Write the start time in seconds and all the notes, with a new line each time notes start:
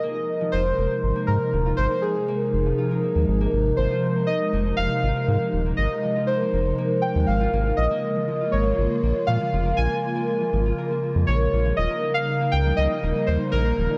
Already playing: C3 F3 G#3 D#4 F4 A#4 D#5
0.03 A#3
0.41 F3
0.52 F1 F4 C5
0.66 A#4
0.78 F1 A#3
0.91 A#3
1.03 G#1
1.16 A#3
1.27 G#2 A#4
1.53 D#1 F3
1.66 F4
1.77 G#1 A#4 C5
1.91 A#3
2.02 A#3 G#4
2.28 A#3
2.53 F1
2.66 F3
2.78 F4
2.91 A#4
3.03 A#3
3.16 D#2 A#3
3.28 G#1
3.41 A#3
3.53 G#1
3.77 G#1 F3 C5
3.91 F4
4.03 A#4
4.16 A#3
4.27 A#3 D#5
4.53 F1 A#3
4.77 F1 F5
4.91 F3
5.03 G#1 F4
5.16 A#4
5.28 G#2 A#3
5.41 A#3
5.53 D#1
5.66 A#3
5.77 G#1 D#5
6.03 F3
6.16 F4
6.27 A#4 C5
6.41 A#3
6.53 F1 A#3
6.78 A#3
7.02 G5
7.16 D#2 G#3
7.20 G5
7.27 G#1 A#3 F5
7.41 F4
7.53 G#1 A#3
7.66 F4
7.77 A#1 C#3 A#3 F4 D#5
7.91 A#3
8.16 F3
8.28 F3
8.41 F4
8.52 G#1 A#4 C#5
8.66 A#3
8.78 G#1 A#3
9.03 A#1 A#3
9.27 A#2 F3 F5
9.41 F3
9.53 F1 F4
9.66 A#4
9.77 A#1 A#3 G#5
9.91 A#3
10.16 A#3
10.41 F3
10.53 G#1 F3
10.66 F4
10.78 A#4
10.91 A#3
11.03 A#3
11.16 F2
11.27 A#1 A#3 C#5
11.53 A#1 F3
11.66 F3
11.77 D#1 G3 A#3 D#4 F4 D#5
11.91 A#4
12.03 A#3
12.14 A#3 F5
12.41 A#3
12.52 C#2 G5
12.66 F3
12.77 C#2 F3 D#5
12.91 F4
13.03 D#1 A#4
13.16 A#3
13.27 D#2 A#3 C5
13.52 A#1 A#3 A#4
13.78 D#1 F3
13.91 F3